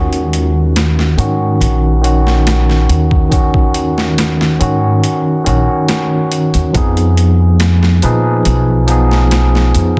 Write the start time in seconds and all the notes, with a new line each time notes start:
Already playing: D#2 D#3 C#4 F#4
0.13 closed hi-hat
0.33 closed hi-hat
0.76 snare, closed hi-hat
0.99 snare
1.18 G#2 D#3 C#4 F#4, closed hi-hat
1.61 A#1, closed hi-hat
2.02 D#3 C#4 F#4, closed hi-hat
2.27 snare
2.47 snare, closed hi-hat
2.70 snare
2.89 D#2, closed hi-hat
3.11 kick
3.29 D#3 C#4 F#4, kick, closed hi-hat
3.54 kick
3.74 closed hi-hat
3.98 snare
4.18 snare, closed hi-hat
4.41 snare
4.60 G#2 D#3 C#4 F#4, closed hi-hat
5.04 closed hi-hat
5.44 A#1 D#3 C#4 F#4, closed hi-hat
5.88 snare, closed hi-hat
6.32 closed hi-hat
6.54 D#2, closed hi-hat
6.73 F2 F3 B3 D#4, kick, closed hi-hat
6.77 G#4
6.97 closed hi-hat
7.17 closed hi-hat
7.60 snare, closed hi-hat
7.83 snare
8.02 A#2 F3 D#4 G#4 B4, closed hi-hat
8.45 B1, closed hi-hat
8.87 F3 B3 D#4, closed hi-hat
8.91 G#4
9.11 snare
9.31 snare, closed hi-hat
9.55 snare
9.75 F2, closed hi-hat